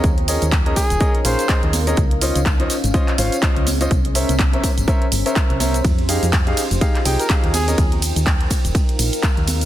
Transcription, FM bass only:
X:1
M:4/4
L:1/16
Q:"Swing 16ths" 1/4=124
K:Ebmix
V:1 name="FM bass" clef=bass
E,,3 E,,3 z E,,, z2 B,,, z2 E,,3 | D,,3 D,,3 z A,,, z2 A,,, z2 D,,3 | C,,3 C,,3 z G,,, z2 G,,, z2 C,,3 | F,,3 F,,3 z F,,, z2 C,, z2 E,,3 |
E,,3 E,,3 z E,,, z2 B,,, z2 E,,3 |]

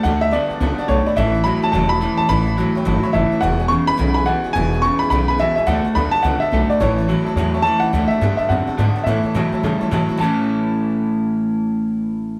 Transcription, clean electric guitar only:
X:1
M:4/4
L:1/8
Q:"Swing" 1/4=213
K:A
V:1 name="Clean electric guitar" clef=bass
[D,A,]2 [D,B,]2 [D,B,]2 [D,A,]2 | [A,,E,]2 [A,,F,]2 [A,,F,]2 [A,,E,]2 | [A,,E,]2 [A,,F,]2 [A,,F,]2 [A,,E,]2 | [E,,B,,]2 [E,,C,]2 [E,,C,]2 [E,,B,,]2 |
[E,,B,,]2 [E,,C,]2 [E,,C,]2 [E,,B,,]2 | [D,A,]2 [D,B,]2 [D,B,]2 [D,A,]2 | [A,,E,]2 [A,,F,]2 [A,,F,]2 [A,,E,]2 | [D,A,]2 [D,B,]2 [D,=C]2 [D,B,]2 |
[A,,E,]2 [A,,F,]2 [A,,=G,]2 [A,,F,]2 | [A,,E,A,CE]8- | [A,,E,A,CE]8 |]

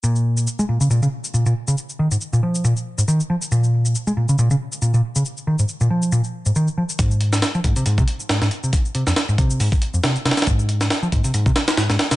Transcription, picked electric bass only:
X:1
M:4/4
L:1/16
Q:"Swing 16ths" 1/4=138
K:Abmix
V:1 name="Picked electric bass" clef=bass
B,,4 z A, B,, D, B,, D, z2 B,, B,, z D, | z2 E, A,, z B,, F,2 B,, z2 A,, E, z F, z | B,,4 z A, B,, D, B,, D, z2 B,, B,, z D, | z2 E, A,, z B,, F,2 B,, z2 A,, E, z F, z |
A,,4 z F, A,, C, A,, C, z2 A,, A,, z C, | z2 C, F,, z A,, C,2 A,, z2 F,, C, z C, z | A,,4 z F, A,, C, A,, C, z2 A,, A,, z C, |]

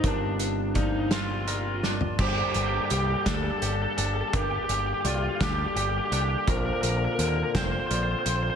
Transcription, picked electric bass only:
X:1
M:6/8
L:1/8
Q:3/8=56
K:Gm
V:1 name="Picked electric bass" clef=bass
G,,,6 | G,,, G,,, C,, D,, G,,, G,,, | G,,, G,,, C,, D,, G,,, C,, | B,,, B,,, E,, F,,, B,,, B,,, |]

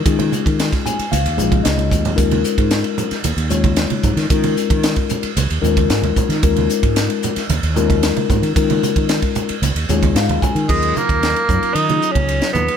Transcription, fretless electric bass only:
X:1
M:4/4
L:1/16
Q:1/4=113
K:Ebm
V:1 name="Fretless electric bass" clef=bass
E,2 z E,2 z3 D,, E,, B,,,2 D,,2 E,,2 | E,,2 z A,,2 z3 E,, E,,4 z A,, E, | E,2 z E,2 z3 D,, E,, E,,2 A,, E,, z E, | E,,2 z A,,2 z3 E,, E,,4 z A,, E, |
E,2 z E,2 z3 D,, E,, E,,2 A,, E,, z E, | E,,2 z E,,2 z G,, z E,2 z D,,2 z E,, z |]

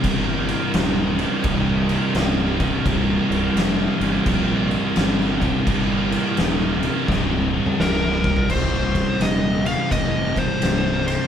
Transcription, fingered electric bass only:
X:1
M:4/4
L:1/8
Q:"Swing" 1/4=85
K:Cm
V:1 name="Fingered electric bass" clef=bass
G,,,2 E,,,2 C,,,2 C,,,2 | C,,, C,,, F,,, G,,, B,,,2 G,,,2 | G,,,2 E,,,2 C,,,2 C,,,2 | C,,,2 E,,,2 F,,,2 C,,,2 |]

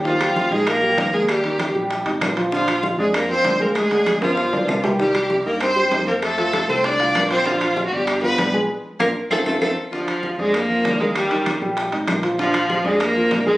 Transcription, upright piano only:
X:1
M:4/4
L:1/8
Q:1/4=194
K:Bbmix
V:1 name="Upright piano"
[E,E] [G,G]2 [Ee]2 [G,G] [Ee] [B,B]- | [B,B] [E,E]2 [G,G]2 [Ee]2 [F,F] | [D,D] [F,F]2 [Dd]2 [F,F] [Dd] [A,A]- | [A,A] [D,D]2 [F,F]2 [Dd]2 [G,G] |
[E,E] [G,G]2 [Ee]2 [G,G] [Ee] [Cc]- | [Cc] [F,F]2 [=A,=A]2 [Ff]2 [F,F] | [D,D] [F,F]2 [Dd]2 [F,F] [Dd] [A,A] | z2 [B,DF] z [CEF] [CEF] [CE] z |
[D,D] [F,F]2 [Dd]2 [F,F] [Dd] [B,B]- | [B,B] [E,E]2 [G,G]2 [Ee]2 [F,F] | [D,D] [F,F]2 [Dd]2 [F,F] [Dd] [A,A] |]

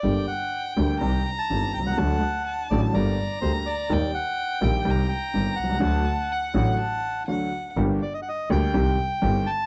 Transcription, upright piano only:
X:1
M:4/4
L:1/16
Q:1/4=124
K:Gm
V:1 name="Upright piano" clef=bass
[G,,,G,,D,G,B,G]2 z4 [D,,D,G,B,G]2 [C,,C,E,G,CG]2 z2 [G,,,G,,E,G,CG]2 z/2 =B,,,/2 C,,/2 ^C,,/2 | [D,,D,^F,A,^F]2 z4 [A,,,A,,D,F,A,F]2 [G,,,G,,D,G,B,G]2 z2 [D,,D,G,B,G]2 z2 | [E,,E,G,B,G]2 z4 [B,,,B,,E,G,B,G]2 [C,,C,E,G,CG]2 z2 [G,,,G,,E,G,CG]2 z/2 =B,,,/2 C,,/2 ^C,,/2 | [D,,D,^F,A,^F]2 z4 [A,,,A,,D,F,A,F]2 z4 [D,,D,F,A,F]2 z2 |
[G,,,G,,D,G,B,G]2 z4 [D,,D,G,B,G]2 [C,,C,E,G,CG]2 z2 [G,,,G,,E,G,CG]2 z2 |]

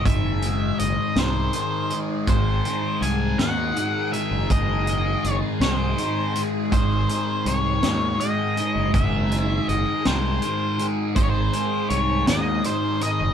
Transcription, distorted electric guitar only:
X:1
M:6/8
L:1/8
Q:3/8=54
K:G#
V:1 name="Distorted electric guitar" clef=bass
[G,,D,G,] [D,G,]2 [G,,D,G,] [G,,D,G,] [D,G,] | [G,,D,G,] [D,G,]2 [G,,D,G,] [G,,D,G,] [D,G,] | [G,,D,G,] [D,G,]2 [G,,D,G,] [G,,D,G,] [D,G,] | [G,,D,G,] [D,G,]2 [G,,D,G,] [G,,D,G,] [D,G,] |
[G,,D,G,] [D,G,]2 [G,,D,G,] [G,,D,G,] [D,G,] | [G,,D,G,] [D,G,]2 [G,,D,G,] [G,,D,G,] [D,G,] |]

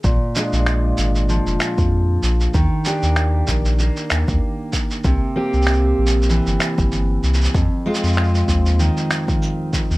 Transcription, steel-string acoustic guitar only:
X:1
M:4/4
L:1/8
Q:"Swing 16ths" 1/4=96
K:Bbmix
V:1 name="Steel-string acoustic guitar"
B,, [A,DF]3 F,4 | E, [B,DG]3 B,4 | C, [B,CG]3 =E,4 | F,, [A,CF]3 E,4 |]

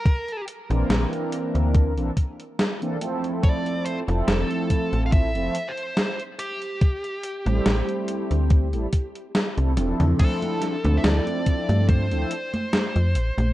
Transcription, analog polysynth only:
X:1
M:4/4
L:1/16
Q:"Swing 16ths" 1/4=71
K:Dm
V:1 name="Analog polysynth"
z3 [E,B,CDB]6 [E,B,CDA] z3 [E,B,CDA] [F,A,CEA]2- | [F,A,CEA]3 [F,A,CEA]6 [F,A,CEA] z6 | z3 [G,A,CEc]6 [G,A,CEA] z3 [G,A,CEA] [F,CDEA]2 | [F,CDEA]3 [F,CDEA]6 [F,CDEA] z6 |]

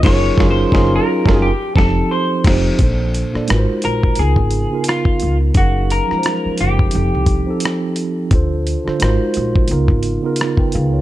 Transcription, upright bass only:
X:1
M:4/4
L:1/16
Q:"Swing 16ths" 1/4=87
K:Fmix
V:1 name="Upright bass" clef=bass
_G,,,2 G,,,2 G,,,2 z G,,,2 z F,,,2 z2 F,,,2 | B,,,3 z _A,,, z B,,,2 _D,, A,,,2 z3 D,,2 | _G,,,3 z3 G,,,2 F,,, C,,2 z4 z | D,,3 z _A,,, z B,,,2 _D,, A,,,2 z3 D,,2 |]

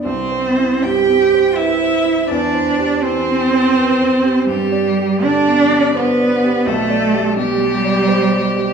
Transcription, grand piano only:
X:1
M:3/4
L:1/8
Q:1/4=83
K:C
V:1 name="Grand piano"
(3C,, c E (3G,, C c (3B c E | (3E,, c G (3E, C c (3B c G | (3G,, d G (3D, B, d (3c d G | (3B,,, d G (3B,, G, d (3c d G |]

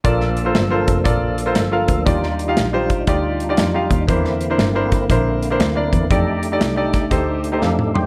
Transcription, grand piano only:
X:1
M:4/4
L:1/16
Q:"Swing" 1/4=119
K:Bb
V:1 name="Grand piano"
[FABd]2 z [FABc] z [FABc]2 z [FABd]2 z [FABc] z [FABf]2 z | [EFGd]2 z [EFGf] z [EFGc]2 z [EFGd]2 z [EFGd] z [EFGf]2 z | [D=EBc]2 z [DEBc] z [DEBc]2 z [DEBc]2 z [DEBc] z [DEBd]2 z | [EGAd]2 z [EGAd] z [EGAd]2 z [EGAc]2 z [EGAc] [cf]2 [gc']2 |]
V:2 name="Grand piano" clef=bass
B,,6 z8 z2 | E,6 z8 z2 | =E,6 z8 z2 | z16 |]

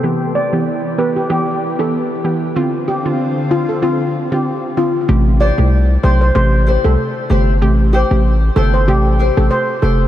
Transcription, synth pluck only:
X:1
M:4/4
L:1/16
Q:"Swing 16ths" 1/4=95
K:Am
V:1 name="Synth pluck"
[E,B,G]3 [E,B,G] z2 [E,B,G] z [E,B,G]3 [E,B,G] z2 [E,B,G] z | [D,CF]3 [D,CF] z2 [D,CF] z [D,CF]3 [D,CF] z2 [D,CF] z | [C,A,G]3 [C,A,G] z2 [C,A,G] z [C,A,G]3 [C,A,G] z2 [C,A,G] z | [C,A,G]3 [C,A,G] z2 [C,A,G] z [C,A,G]3 [C,A,G] z2 [C,A,G] z |]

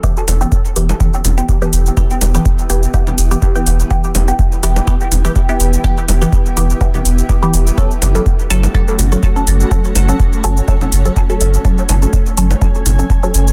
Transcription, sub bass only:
X:1
M:4/4
L:1/8
Q:"Swing 16ths" 1/4=124
K:Edor
V:1 name="Sub bass" clef=bass
z E,,, z E,,, z E,,, z E,,, | z E,,, z E,,, z E,,, z E,,, | z E,,, z E,,, z E,,, z E,,, | z E,,, z E,,, z E,,, z E,,, |
z F,,, z F,,, z F,,, z F,,, | z F,,, z F,,, z F,,, z F,,, | z F,,, z F,,, z F,,, z F,,, |]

